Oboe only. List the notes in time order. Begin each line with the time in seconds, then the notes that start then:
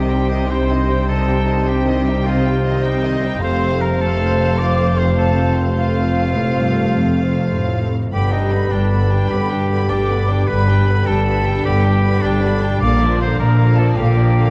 Already playing: G4
0.51 C5
1.09 A4
1.67 G4
2.27 F4
2.84 D#4
3.44 C5
3.82 A#4
4.01 A4
4.59 D5
4.98 C5
5.19 A4
5.78 F4
8.14 G4
8.32 D#4
8.72 D4
9.30 G4
9.89 D5
10.48 B4
11.06 A4
11.65 G4
12.22 D4
12.82 D5
13.21 C5
13.40 A#4
13.78 A4
13.99 G4